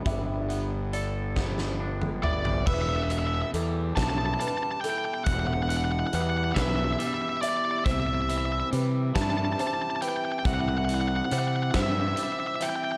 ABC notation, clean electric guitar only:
X:1
M:6/8
L:1/8
Q:3/8=46
K:Em
V:1 name="Clean electric guitar" clef=bass
[G,B,DA] B, A B, D B, | E,, B,, G, E, G, E, | E,, B,, G, E, G, E, | C, E, G, E, G, E, |
C, E, G, E, G, E, |]